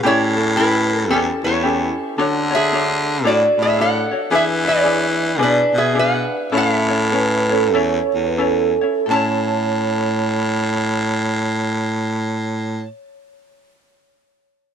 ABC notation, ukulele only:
X:1
M:4/4
L:1/8
Q:"Swing" 1/4=103
K:A
V:1 name="Ukulele"
[CE=GA] [CEA] [CEGA]2 [CEGA]2 [CEGA]2 | [DFAc] [DFc] [DFc]2 [DFAc]2 [DFAc] [DFc] | [DEGB] [DEB] [DEGB]2 [DEGB]2 [DEGB]2 | [CEAc] [CEc] [CEAc] [CEc] [CEAc]2 [CEAc] [CEc] |
[CEAc]8- | [CEAc]8 |]